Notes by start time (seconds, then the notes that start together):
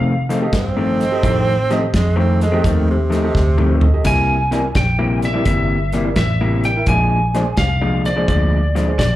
Already playing: F2 C3 D#3 A3 C4 F5
0.29 F2 D#3 A3 C4 A4 D#5, snare, closed hi-hat
0.42 G4 A4 D#5
0.53 G2 C4, muted clean electric guitar stroke, kick, snare, closed hi-hat
0.77 F2 D#3 A3 C4
1.00 A4 D#5, snare, closed hi-hat
1.12 G4 A4 D#5
1.23 F2 A2 D#3 A3 C4, kick, closed hi-hat
1.70 F2 D#3 A3 C4 G4 A4 D#5, snare, closed hi-hat
1.82 muted clean electric guitar stroke
1.94 F2 G#3, kick, snare, closed hi-hat
2.16 F2 D#3 A3 C4
2.41 G#3 A4 D#5, snare, closed hi-hat
2.52 F2 D#3 A3 C4 G4 A4 D#5
2.63 D#2 F2 D#3 A3 C4, kick, snare, closed hi-hat
2.90 C3
3.10 F2 D#3 A3 C4 A4 D#5, snare, closed hi-hat
3.24 G4 A4 D#5
3.34 D2, muted clean electric guitar stroke, kick, snare
3.58 F2 D#3 A3 C4, mid tom
3.81 A4 D#5, floor tom
3.94 G4 A4 D#5
4.04 C2 C3 G3 A#3 E4 G#5, kick, snare, closed hi-hat, splash
4.51 C3 G3 A#3 E4 A#4 D5, snare, closed hi-hat
4.63 muted clean electric guitar stroke
4.75 A#1 G5, kick, snare, closed hi-hat
4.99 C3 G3 A#3 E4
5.22 A#4 D5 E5, snare, closed hi-hat
5.33 C3 G3 A#3 E4 A#4 D5
5.45 G1 C3 G3 A#3 E4 E5, kick, closed hi-hat
5.92 C3 G3 A#3 E4 A#4 D5, snare, closed hi-hat
6.04 E4 A#4 D5
6.16 A1 E5, muted clean electric guitar stroke, kick, snare, closed hi-hat
6.41 C3 G3 A#3 E4
6.64 A#4 D5 G5, snare, closed hi-hat
6.76 E4 A#4 E5
6.86 A#1 A#2 F3 G#3 D4 G#5, kick, closed hi-hat
7.34 A#2 F3 G#3 D4 G#4 C5 D5, snare, closed hi-hat
7.46 muted clean electric guitar stroke
7.57 C2 F5, kick, snare, closed hi-hat
7.81 A#2 F3 G#3 D4
8.05 C5 D5, snare, closed hi-hat
8.16 A#2 F3 G#3 D4 G#4 C5 D5
8.28 D2 A#2 F3 G#3 D4 D5, kick, closed hi-hat
8.75 A#2 F3 G#3 D4 C5 D5, snare, closed hi-hat
8.88 G#4 C5 D5
8.98 A#1 D5, muted clean electric guitar stroke, kick, snare, closed hi-hat